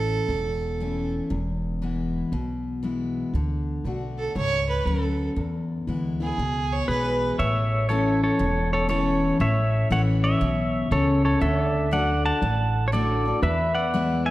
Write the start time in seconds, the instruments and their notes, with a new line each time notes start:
Already playing: upright bass A1, steel-string acoustic guitar A2 E3 A3 C#4 E4, fiddle A4
0.29 upright bass E1, steel-string acoustic guitar E2
0.80 steel-string acoustic guitar E3 A3 C#4 E4
1.30 upright bass E1, steel-string acoustic guitar E2
1.82 steel-string acoustic guitar E3 G#3 B3 E4
2.32 upright bass B1, steel-string acoustic guitar B2
2.83 steel-string acoustic guitar E3 G#3 B3 E4
3.34 upright bass D2, steel-string acoustic guitar D3
3.84 upright bass B1, steel-string acoustic guitar D3 A3 D4 F#4
4.18 fiddle A4
4.36 upright bass C#2, steel-string acoustic guitar G#2, fiddle C#5
4.69 fiddle B4
4.86 upright bass D2, steel-string acoustic guitar F#2, fiddle A4
5.36 steel-string acoustic guitar E2, upright bass E2
5.87 upright bass D2, steel-string acoustic guitar E3 G#3 B3 E4
6.20 steel-string acoustic guitar B3 E4, fiddle G#4
6.38 upright bass C#2, steel-string acoustic guitar B2
6.73 fiddle C#5
6.88 upright bass B1, steel-string acoustic guitar E3 G#3 B3 E4, pedal steel guitar G#4 B4, fiddle B4
7.39 upright bass A1, steel-string acoustic guitar A2, pedal steel guitar C#5 E5
7.89 steel-string acoustic guitar E3 A3 C#4 E4, pedal steel guitar A4 C#5
8.24 pedal steel guitar A4 C#5
8.39 upright bass E1, steel-string acoustic guitar E2
8.73 pedal steel guitar A4 C#5
8.89 steel-string acoustic guitar E3 A3 C#4 E4, pedal steel guitar A4 C#5
9.40 upright bass A1, steel-string acoustic guitar A2, pedal steel guitar C#5 E5
9.90 upright bass A1, steel-string acoustic guitar E3 A3 C#4 E4, pedal steel guitar C#5 F#5
10.24 pedal steel guitar C#5 E5
10.41 upright bass B1, steel-string acoustic guitar B2
10.91 upright bass C#2, steel-string acoustic guitar C#3, pedal steel guitar A4 C#5
11.25 pedal steel guitar A4 C#5
11.40 upright bass D2, steel-string acoustic guitar D3, pedal steel guitar A4 C#5 E5 F#5
11.60 pedal steel guitar D5
11.91 steel-string acoustic guitar D3 A3 D4 F#4, pedal steel guitar D5 F#5
12.26 pedal steel guitar F#5 A5
12.42 upright bass A1, steel-string acoustic guitar A2
12.88 pedal steel guitar C#5
12.92 steel-string acoustic guitar D3 A3 D4 F#4, pedal steel guitar A4 D5
13.25 steel-string acoustic guitar D4 F#4
13.42 upright bass E2, steel-string acoustic guitar E2, pedal steel guitar B4 E5
13.75 pedal steel guitar D5 F#5
13.94 steel-string acoustic guitar E3 G#3 B3 E4
14.26 pedal steel guitar E5 G#5